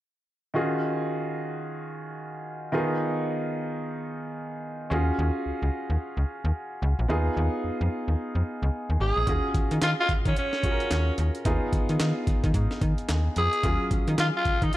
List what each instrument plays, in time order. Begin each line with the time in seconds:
0.54 grand piano D#3 C#4 F4 F#4 G#4
2.72 grand piano D#3 B3 D#4 F4 G#4
4.90 fm bass D#2, grand piano C#4 F4 F#4 G#4
5.19 fm bass D#2
5.46 fm bass C#2
5.62 fm bass C#2
5.90 fm bass D#2
6.17 fm bass C#2
6.44 fm bass D#2
6.82 fm bass C#2
6.99 fm bass A#1
7.08 fm bass D#2, grand piano B3 D#4 F4 G#4
7.37 fm bass D#2
7.64 fm bass F2
7.81 fm bass F2
8.08 fm bass D#2
8.35 fm bass F2
8.62 fm bass C#2
8.90 fm bass D#2
9.00 fm bass G#1, tenor saxophone G#4
9.17 fm bass A#1
9.27 fm bass D#2, grand piano C#4 F4 F#4 G#4, kick, closed hi-hat
9.54 fm bass D#3, kick, closed hi-hat
9.71 fm bass D#3, closed hi-hat
9.82 fm bass D#3, tenor saxophone F4, snare, clap, closed hi-hat
10.00 tenor saxophone F4
10.09 fm bass D#3, kick, closed hi-hat
10.25 fm bass D#3, tenor saxophone C#4, kick, closed hi-hat
10.36 tenor saxophone C#4, closed hi-hat
10.53 snare
10.63 grand piano C#4 F4 F#4 G#4, kick, closed hi-hat
10.71 grand piano A#4
10.80 closed hi-hat
10.91 fm bass D#2, snare, clap, closed hi-hat
11.18 fm bass D#2, closed hi-hat
11.35 closed hi-hat
11.45 fm bass D#2, grand piano B3 D#4 F4 G#4, kick, closed hi-hat
11.73 fm bass D#3, kick, closed hi-hat
11.89 fm bass D#3, closed hi-hat
12.00 fm bass D#3, snare, clap, closed hi-hat
12.27 fm bass D#3, kick, closed hi-hat
12.44 fm bass D#3, kick, closed hi-hat
12.54 fm bass G#2, kick, closed hi-hat
12.71 snare
12.81 fm bass D#3, kick, closed hi-hat
12.98 closed hi-hat
13.09 fm bass D#2, snare, clap, closed hi-hat
13.36 fm bass F2, tenor saxophone G#4, closed hi-hat
13.53 closed hi-hat
13.63 fm bass D#2, grand piano F#3 C#4 F4 G#4, kick, closed hi-hat
13.91 fm bass D#3, kick, closed hi-hat
14.08 fm bass D#3, closed hi-hat
14.18 fm bass D#3, tenor saxophone F4, snare, clap, closed hi-hat
14.37 tenor saxophone F4
14.45 fm bass D#3, kick, closed hi-hat
14.62 fm bass D#3, tenor saxophone D#4, kick, closed hi-hat
14.73 closed hi-hat